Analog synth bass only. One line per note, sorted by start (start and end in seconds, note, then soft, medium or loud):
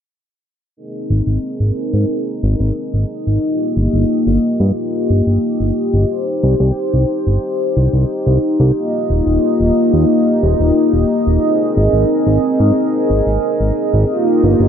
1.10 1.22 G#1 medium
1.27 1.39 G#1 medium
1.60 1.72 G#1 medium
1.93 2.05 G#2 medium
2.43 2.55 G#1 medium
2.60 2.72 G#1 medium
2.94 3.05 G#1 medium
3.27 3.39 G#1 medium
3.77 3.89 G1 medium
3.93 4.05 G1 medium
4.27 4.39 G1 medium
4.60 4.72 G2 medium
5.10 5.22 G1 medium
5.27 5.39 G1 medium
5.60 5.72 G1 medium
5.93 6.05 G1 medium
6.43 6.55 C2 medium
6.60 6.72 C2 medium
6.93 7.05 C2 medium
7.27 7.39 G1 medium
7.77 7.89 C2 medium
7.93 8.05 C2 medium
8.27 8.38 C2 medium
8.60 8.72 C2 medium
9.10 9.22 D#1 medium
9.27 9.39 D#1 medium
9.60 9.72 D#1 medium
9.93 10.05 D#2 medium
10.43 10.55 D#1 medium
10.60 10.72 D#1 medium
10.93 11.05 D#1 medium
11.27 11.39 D#1 medium
11.77 11.89 G#1 medium
11.93 12.05 G#1 medium
12.27 12.39 G#1 medium
12.60 12.72 G#2 medium
13.10 13.22 G#1 medium
13.27 13.39 G#1 medium
13.60 13.72 G#1 medium
13.93 14.05 G#1 medium
14.43 14.55 G1 medium
14.60 14.68 G1 medium